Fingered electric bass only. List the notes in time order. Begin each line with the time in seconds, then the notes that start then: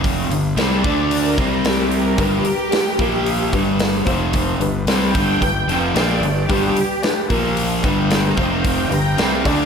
Already playing: F1
0.29 G1
0.56 C2
0.84 D2
1.38 C2
2.18 G1
2.44 muted fingered electric bass stroke
2.99 A#1
3.53 G1
4.07 F1
4.58 G1
4.85 C2
5.15 G1
5.41 G1
5.67 F1
5.94 A#1
6.20 G1
6.50 G1
6.75 muted fingered electric bass stroke
7.30 A#1
7.83 G1
8.37 F1
8.90 G1
9.18 C2
9.46 D2